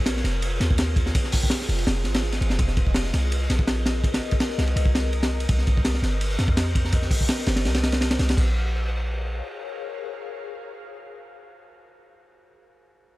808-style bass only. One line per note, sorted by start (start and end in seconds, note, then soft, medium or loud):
0.00 0.23 A#1 loud
0.24 0.59 F1 medium
0.60 1.13 D#2 medium
1.69 1.85 F1 medium
1.87 2.06 F1 loud
2.05 2.40 G#1 medium
2.41 2.52 G#1 loud
2.51 2.58 F1 loud
2.59 3.12 F1 loud
3.14 3.48 C2 medium
3.50 4.21 A#1 medium
4.58 4.75 C2 medium
4.76 5.47 C2 loud
5.49 6.02 C2 loud
6.02 6.37 G1 medium
6.39 7.10 F2 medium
7.47 7.67 G1 medium
7.65 8.19 C2 loud
8.19 8.36 C2 loud
8.37 9.42 A#1 loud